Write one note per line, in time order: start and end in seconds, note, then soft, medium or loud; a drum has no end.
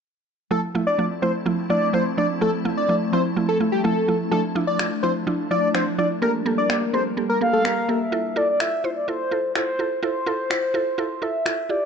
0.51 0.63 F3 medium
0.51 4.28 F3 medium
0.51 0.63 A3 medium
0.51 6.18 A3 medium
0.51 4.28 C4 medium
0.51 6.18 E4 medium
0.51 0.63 E4 loud
0.51 0.60 A4 medium
0.51 8.09 A5 medium
0.75 0.86 F3 medium
0.75 0.87 A3 medium
0.75 0.87 E4 loud
0.87 1.05 D5 medium
0.98 1.10 F3 medium
0.98 1.10 A3 medium
0.98 1.10 F4 medium
1.22 1.34 F3 medium
1.22 1.34 A3 medium
1.22 1.34 E4 medium
1.22 1.32 C5 medium
1.46 1.58 F3 medium
1.46 1.58 A3 medium
1.46 1.58 E4 loud
1.70 1.81 F3 medium
1.70 1.82 A3 medium
1.70 1.82 E4 medium
1.70 1.88 D5 medium
1.93 2.05 F3 medium
1.93 2.05 A3 medium
1.93 2.06 E4 loud
1.93 2.03 C5 medium
2.17 2.29 F3 medium
2.17 2.29 A3 medium
2.17 2.30 D4 medium
2.17 2.27 D5 medium
2.41 2.53 F3 medium
2.41 2.53 A3 medium
2.41 2.53 E4 loud
2.41 2.51 A4 loud
2.65 2.77 F3 medium
2.65 2.77 A3 medium
2.65 2.77 E4 loud
2.77 2.96 D5 medium
2.89 3.01 F3 medium
2.89 3.01 A3 medium
2.89 3.01 E4 medium
3.13 3.24 F3 medium
3.13 3.25 A3 medium
3.13 3.25 E4 medium
3.13 3.22 C5 medium
3.36 3.48 F3 medium
3.36 3.48 A3 medium
3.36 3.49 E4 medium
3.49 3.58 A4 medium
3.60 3.72 F3 medium
3.60 3.72 A3 medium
3.60 3.72 E4 medium
3.72 3.81 G4 medium
3.84 3.96 F3 loud
3.84 3.96 A3 medium
3.84 3.96 E4 loud
3.84 4.18 A4 medium
4.08 4.20 F3 medium
4.08 4.20 A3 medium
4.08 4.20 E4 medium
4.31 4.43 F3 medium
4.31 6.20 F3 medium
4.31 4.44 D4 medium
4.31 8.09 D4 medium
4.31 4.44 E4 loud
4.31 4.41 A4 loud
4.55 4.67 F3 medium
4.55 4.67 D4 medium
4.55 4.67 E4 loud
4.67 4.86 D5 medium
4.79 4.91 F3 medium
4.79 4.91 D4 medium
4.79 4.91 F4 medium
4.79 finger snap loud
5.03 5.15 F3 medium
5.03 5.15 D4 medium
5.03 5.15 E4 medium
5.03 5.12 C5 medium
5.27 5.39 F3 medium
5.27 5.39 D4 medium
5.27 5.39 E4 loud
5.51 5.63 F3 medium
5.51 5.63 D4 medium
5.51 5.63 E4 medium
5.51 5.69 D5 medium
5.74 5.86 F3 medium
5.74 5.86 D4 medium
5.74 5.87 E4 loud
5.74 5.84 C5 medium
5.74 finger snap loud
5.98 6.10 F3 medium
5.98 6.10 D4 medium
5.98 6.10 E4 medium
5.98 6.08 D5 medium
6.22 8.11 G3 medium
6.22 6.34 A#3 medium
6.22 8.11 A#3 medium
6.22 6.34 G4 medium
6.22 6.34 A4 loud
6.22 6.32 A#4 loud
6.22 8.11 A#4 medium
6.46 6.58 A#3 medium
6.46 6.58 G4 medium
6.46 6.58 A4 loud
6.58 6.76 D5 medium
6.70 6.81 A#3 medium
6.70 6.82 G4 medium
6.70 6.82 C5 medium
6.70 finger snap loud
6.93 7.05 A#3 medium
6.93 7.05 G4 medium
6.93 7.06 A4 medium
6.93 7.03 C5 medium
7.17 7.29 A#3 medium
7.17 7.29 G4 medium
7.17 7.29 A4 medium
7.29 7.39 A#4 medium
7.41 7.53 A#3 medium
7.41 7.53 G4 medium
7.41 7.53 A4 medium
7.41 7.91 F5 loud
7.53 7.62 A4 medium
7.65 7.77 A#3 medium
7.65 7.77 G4 medium
7.65 7.77 A4 loud
7.65 7.99 A#4 medium
7.65 finger snap loud
7.89 8.01 A#3 medium
7.89 8.01 G4 medium
7.89 8.01 A4 medium
7.89 8.36 E5 loud
8.12 8.24 E4 medium
8.12 8.24 F4 medium
8.12 8.25 A4 loud
8.36 8.48 E4 medium
8.36 8.48 F4 medium
8.36 8.48 A4 loud
8.36 8.48 D5 medium
8.49 8.62 D5 medium
8.60 8.72 E4 medium
8.60 8.72 F4 medium
8.60 8.72 A4 medium
8.60 8.84 E5 loud
8.60 finger snap loud
8.84 8.96 E4 medium
8.84 8.96 F4 medium
8.84 8.90 C5 medium
8.84 8.96 C5 medium
8.96 9.07 D5 medium
9.08 9.20 E4 medium
9.08 9.20 F4 medium
9.08 9.20 A4 medium
9.08 9.52 C5 medium
9.31 9.43 E4 medium
9.31 9.44 F4 medium
9.31 9.44 A4 medium
9.55 9.67 E4 medium
9.55 9.67 F4 medium
9.55 9.68 A4 loud
9.55 10.00 C5 loud
9.55 finger snap loud
9.79 9.91 E4 medium
9.79 9.91 F4 medium
9.79 9.91 A4 medium
10.03 10.15 E4 loud
10.03 10.15 F4 medium
10.03 10.15 A4 loud
10.03 11.24 C5 loud
10.26 10.39 E4 medium
10.26 10.39 F4 medium
10.26 10.39 A4 loud
10.50 10.62 E4 medium
10.50 10.62 F4 medium
10.50 10.63 C5 medium
10.50 finger snap loud
10.74 10.86 E4 medium
10.74 10.86 F4 medium
10.74 10.86 A4 loud
10.98 11.10 E4 medium
10.98 11.10 F4 medium
10.98 11.10 A4 loud
11.22 11.34 E4 medium
11.22 11.34 F4 medium
11.22 11.34 A4 medium
11.22 11.71 E5 loud
11.46 11.58 E4 medium
11.46 11.58 F4 medium
11.46 11.58 A4 loud
11.46 finger snap loud
11.69 11.81 E4 medium
11.69 11.82 F4 medium
11.69 11.82 G4 medium
11.69 11.85 D5 loud